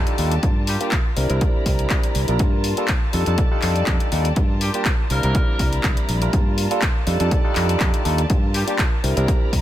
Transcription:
Already playing: G3 D4 D#4 F4 G4 A4 D5 A5
0.07 closed hi-hat
0.18 D#2 G3 D4 D#4 F4 A4, open hi-hat
0.32 closed hi-hat
0.43 G2 F4 A#4, kick, closed hi-hat
0.67 G3 G4, open hi-hat
0.80 G3 A#3 D4 F4 G4, closed hi-hat
0.91 kick, clap, closed hi-hat
1.16 C2 G3 C4 D4 E4 A#4 D5 A#5, open hi-hat
1.29 C2 G3 C4 D4 E4 A#4, closed hi-hat
1.41 kick, closed hi-hat
1.65 C2 G3 C4 D4 E4 A#4, kick, open hi-hat
1.79 closed hi-hat
1.90 kick, clap, closed hi-hat
2.03 closed hi-hat
2.15 C2, open hi-hat
2.28 A#1 G3 A#3 D4 F4 A#4, closed hi-hat
2.39 G2 F4 A#4 A5, kick, closed hi-hat
2.64 open hi-hat
2.77 G3 A#3 D4 F4 A4, closed hi-hat
2.88 kick, clap, closed hi-hat
3.13 F2 G3 D4 D#4 F4 G4 A4 D5, open hi-hat
3.26 F2 G3 D4 D#4 F4 A4, closed hi-hat
3.38 kick, closed hi-hat
3.51 G3 D4 D#4 F4 A4
3.62 F2, clap, open hi-hat
3.76 closed hi-hat
3.87 F2 D4 D#4 F4 A4, kick, clap, closed hi-hat
4.00 closed hi-hat
4.12 D#2 G3 D4 D#4 F4 A4, open hi-hat
4.25 closed hi-hat
4.36 G2 F4 A#4 A5, kick, closed hi-hat
4.61 G3 G4, open hi-hat
4.74 G3 A#3 D4 F4 G4, closed hi-hat
4.85 kick, clap, closed hi-hat
5.10 C2 G3 A#3 C4 D4 E4 A#4 D5 A#5, open hi-hat
5.23 C2 G3 C4 D4 E4 A#4, closed hi-hat
5.35 kick, closed hi-hat
5.59 C2 G3 C4 D4 E4 A#4, kick, open hi-hat
5.73 closed hi-hat
5.84 C2, kick, clap, closed hi-hat
5.97 closed hi-hat
6.09 A#1, open hi-hat
6.22 G3 A#3 D4 F4 A#4, closed hi-hat
6.33 G2 F4 A#4 A5, kick, closed hi-hat
6.58 open hi-hat
6.71 G3 A#3 D4 F4 A4, closed hi-hat
6.82 kick, clap, closed hi-hat
7.07 F2 G3 D4 D#4 F4 G4 A4 D5, open hi-hat
7.20 F2 G3 D4 D#4 F4 A4, closed hi-hat
7.31 kick, closed hi-hat
7.44 G3 D4 D#4 F4 A4
7.56 F2, clap, open hi-hat
7.69 closed hi-hat
7.80 F2 G3 D4 D#4 A4, kick, clap, closed hi-hat
7.94 closed hi-hat
8.05 D#2 G3 D4 D#4 F4 A4, open hi-hat
8.18 closed hi-hat
8.30 G2 F4 A#4 A5, kick, closed hi-hat
8.54 G3 G4, open hi-hat
8.67 G3 A#3 D4 F4 G4, closed hi-hat
8.79 kick, clap, closed hi-hat
9.03 C2 G3 C4 D4 E4 A#4 D5 A#5, open hi-hat
9.16 C2 G3 C4 D4 E4 A#4, closed hi-hat
9.28 kick, closed hi-hat
9.53 C2, kick, open hi-hat

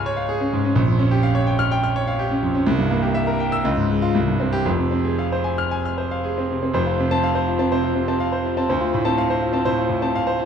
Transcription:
Already playing: C#2 G#2 C#4 G#4 C#5 F5 G#5 F6
0.06 C#5
0.17 F5
0.29 G#4
0.41 C#4
0.53 G#2
0.65 C#4
0.75 A#1
0.88 F2
0.99 C#4
1.11 G4
1.23 F5
1.35 C#5
1.47 G5
1.59 F6
1.71 G5
1.83 F6
1.96 C#5
2.07 F5
2.19 G4
2.31 C#4
2.43 F2
2.55 C#4
2.66 C2
2.79 G2
2.91 A#3
3.02 G4
3.14 E5
3.27 A#4
3.40 G5
3.52 E6
3.65 C#2
3.77 G#2
3.90 G#3
4.02 F4
4.15 C2
4.28 G2
4.40 C4
4.53 G4
4.65 F1 F2
4.79 C3
4.91 C4
5.05 G#4
5.19 F5
5.32 C5
5.44 G#5
5.58 F6
5.71 G#5
5.85 F6
5.98 C5
6.11 F5
6.24 G#4
6.38 C4
6.51 C3
6.63 C4
6.73 F1 F2 C5
6.86 F4
7.00 C3
7.11 C4 A5
7.23 F5
7.35 C5
7.48 F4
7.59 C4 A5
7.71 C3 C5
7.83 F4
7.95 C3
8.08 C4 A5
8.20 F5
8.32 C5
8.45 F4
8.57 C4 A5
8.69 D2 C5
8.81 F4
8.94 A2
9.05 C4 A5
9.18 F5
9.30 C5
9.42 F4
9.53 C4 A5
9.65 A2 C5
9.78 F4
9.89 A2
10.02 C4 A5
10.15 F5
10.27 C5
10.39 F4

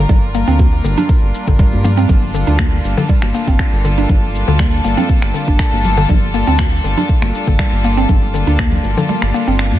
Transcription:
Already playing: G3 A#3 D4 F4 A#4
0.09 G1 G3, kick, low conga, shaker
0.35 A#3, shaker
0.48 D2 C4, shaker
0.59 kick, high conga, shaker
0.84 G1 D3, high conga, shaker
0.97 D4, low conga, shaker
1.09 kick, high conga, shaker
1.22 G1
1.35 shaker
1.47 G1 D3, kick, shaker
1.59 G3, kick, shaker
1.73 G2, high conga
1.84 A#3, low conga, shaker
1.97 C4, shaker
2.09 G1 A4, kick, low conga, shaker
2.34 D3, shaker
2.47 D2 D4, shaker
2.59 finger snap, kick, high conga, shaker
2.84 G1, shaker
2.97 D3, low conga, shaker
3.09 G3, kick, shaker
3.22 G1, finger snap, high conga
3.34 A#3, shaker
3.47 G1 C4, kick, high conga, shaker
3.59 finger snap, kick, shaker
3.73 G1
3.85 D3, shaker
3.98 D4, shaker
4.09 G1, kick, low conga, shaker
4.35 shaker
4.48 D2 D3, shaker
4.59 G3, finger snap, kick, high conga, shaker
4.84 G1 A#3, high conga, shaker
4.97 C4, low conga, shaker
5.09 kick, high conga, shaker
5.22 G1, finger snap
5.34 D3, shaker
5.47 G1 D4, kick, shaker
5.59 finger snap, kick, shaker
5.72 G1, high conga
5.84 low conga, shaker
5.97 D3, shaker
6.09 G1 G3, kick, low conga, shaker
6.34 A#3, shaker
6.47 D2 C4, shaker
6.59 finger snap, kick, high conga, shaker
6.84 G1 D3, shaker
6.97 D4, low conga, shaker
7.09 kick, shaker
7.22 G1, finger snap, high conga
7.35 shaker
7.47 G1 D3, kick, high conga, shaker
7.59 G3, finger snap, kick, shaker
7.72 G1
7.84 A#3, shaker
7.97 C4, shaker
8.09 G1, kick, low conga, shaker
8.34 D3, shaker
8.47 D2 D4, shaker
8.59 finger snap, kick, high conga, shaker
8.72 low conga
8.83 G1, high conga, shaker
8.97 D3, low conga, shaker
9.09 G3, high conga, shaker
9.22 G1, finger snap
9.34 A#3, shaker
9.47 G1 C4, shaker
9.59 finger snap, shaker
9.72 G2, high conga

